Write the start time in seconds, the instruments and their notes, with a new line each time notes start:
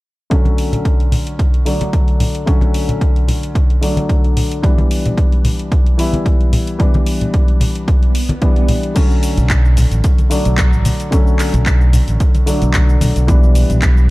0.30 grand piano D3 F#3 A3 C#4, kick, closed hi-hat
0.45 closed hi-hat, high conga
0.58 open hi-hat
0.72 closed hi-hat, low conga
0.85 kick, closed hi-hat
1.00 closed hi-hat
1.12 open hi-hat, high conga, low conga
1.27 closed hi-hat
1.39 kick, closed hi-hat
1.54 closed hi-hat
1.65 grand piano D3 F#3 A3 D4, open hi-hat
1.81 closed hi-hat, high conga
1.93 kick, closed hi-hat
2.08 closed hi-hat
2.20 open hi-hat, low conga
2.35 closed hi-hat
2.46 grand piano D3 F#3 A3 C#4, kick, closed hi-hat
2.61 closed hi-hat, high conga
2.74 open hi-hat
2.89 closed hi-hat, low conga
3.01 kick, closed hi-hat
3.16 closed hi-hat
3.28 open hi-hat, high conga, low conga
3.43 closed hi-hat
3.55 kick, closed hi-hat
3.70 closed hi-hat
3.81 grand piano D3 F#3 A3 D4, open hi-hat
3.97 closed hi-hat, high conga
4.09 kick, closed hi-hat
4.24 closed hi-hat
4.37 open hi-hat, low conga
4.52 closed hi-hat
4.62 grand piano E3 G3 B3 D4, kick, closed hi-hat
4.78 closed hi-hat, high conga
4.91 open hi-hat
5.06 closed hi-hat, low conga
5.17 kick, closed hi-hat
5.32 closed hi-hat
5.45 open hi-hat, high conga, low conga
5.59 closed hi-hat
5.72 kick, closed hi-hat
5.86 closed hi-hat
5.98 grand piano E3 G3 B3 E4, open hi-hat
6.13 closed hi-hat, high conga
6.26 kick, closed hi-hat
6.41 closed hi-hat
6.53 open hi-hat, low conga
6.67 closed hi-hat
6.79 grand piano E3 G3 B3 D4, kick, closed hi-hat
6.94 closed hi-hat, high conga
7.06 open hi-hat
7.21 closed hi-hat, low conga
7.34 kick, closed hi-hat
7.48 closed hi-hat
7.60 open hi-hat, high conga, low conga
7.75 closed hi-hat
7.88 kick, closed hi-hat, swell
8.03 closed hi-hat
8.15 open hi-hat
8.29 closed hi-hat, high conga
8.41 grand piano E3 G3 B3 D4, kick, closed hi-hat
8.56 closed hi-hat
8.68 open hi-hat, low conga
8.83 closed hi-hat
8.95 grand piano D3 F#3 A3 C#4, kick, closed hi-hat, crash, shaker
9.11 shaker
9.23 open hi-hat, shaker
9.37 fingered electric bass B1, closed hi-hat, low conga, shaker
9.50 kick, clap, closed hi-hat, shaker
9.65 shaker
9.77 open hi-hat, low conga, shaker
9.91 fingered electric bass A1, closed hi-hat, shaker
10.04 kick, closed hi-hat, shaker
10.18 closed hi-hat, high conga, shaker
10.30 grand piano D3 F#3 A3 D4, open hi-hat, shaker
10.45 fingered electric bass B1, closed hi-hat, shaker
10.58 kick, clap, closed hi-hat, shaker
10.73 fingered electric bass A1, shaker
10.85 open hi-hat, high conga, low conga, shaker
11.00 closed hi-hat, shaker
11.11 grand piano D3 F#3 A3 C#4, kick, closed hi-hat, shaker
11.27 shaker
11.39 clap, open hi-hat, shaker
11.54 fingered electric bass B1, closed hi-hat, low conga, shaker
11.66 kick, clap, closed hi-hat, shaker
11.81 shaker
11.93 open hi-hat, low conga, shaker
12.08 fingered electric bass A1, closed hi-hat, shaker
12.20 kick, closed hi-hat, shaker
12.35 closed hi-hat, high conga, shaker
12.46 grand piano D3 F#3 A3 D4, open hi-hat, shaker
12.62 fingered electric bass B1, closed hi-hat, shaker
12.74 kick, clap, closed hi-hat, shaker
12.89 shaker
13.01 fingered electric bass B1, open hi-hat, high conga, low conga, shaker
13.16 fingered electric bass B1, closed hi-hat, shaker
13.27 grand piano E3 G3 B3 D4, kick, closed hi-hat, shaker
13.43 shaker
13.55 open hi-hat, shaker
13.70 fingered electric bass B1, closed hi-hat, low conga, shaker
13.82 kick, clap, closed hi-hat, shaker
13.97 shaker